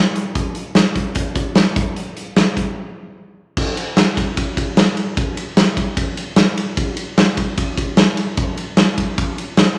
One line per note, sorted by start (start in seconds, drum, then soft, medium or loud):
0.16 closed hi-hat medium
0.35 kick loud
0.35 closed hi-hat medium
0.55 closed hi-hat medium
0.75 snare loud
0.75 closed hi-hat medium
0.96 kick medium
0.96 closed hi-hat medium
1.15 kick medium
1.15 closed hi-hat medium
1.35 kick medium
1.35 closed hi-hat medium
1.55 snare loud
1.55 closed hi-hat medium
1.76 kick loud
1.76 closed hi-hat medium
1.96 closed hi-hat medium
2.17 closed hi-hat medium
2.36 snare loud
2.36 closed hi-hat medium
2.57 kick medium
2.57 closed hi-hat medium
3.57 kick loud
3.57 crash medium
3.77 ride medium
3.97 snare loud
3.97 ride medium
4.17 kick medium
4.17 ride medium
4.37 kick medium
4.37 ride medium
4.57 kick medium
4.57 ride medium
4.77 snare loud
4.77 ride medium
4.97 ride medium
5.17 kick loud
5.17 ride medium
5.37 ride medium
5.57 snare loud
5.57 ride medium
5.77 kick medium
5.77 ride medium
5.97 kick loud
5.97 ride medium
6.17 ride medium
6.36 snare loud
6.36 ride medium
6.57 ride medium
6.77 kick loud
6.77 ride medium
6.97 ride medium
7.18 snare loud
7.18 ride medium
7.37 kick medium
7.37 ride medium
7.58 kick loud
7.58 ride medium
7.78 kick medium
7.78 ride medium
7.97 snare loud
7.97 ride medium
8.17 ride medium
8.37 kick loud
8.37 ride medium
8.57 ride medium
8.77 snare loud
8.77 ride medium
8.98 kick medium
8.98 ride medium
9.18 kick loud
9.18 ride medium
9.38 ride medium
9.57 snare loud
9.57 ride medium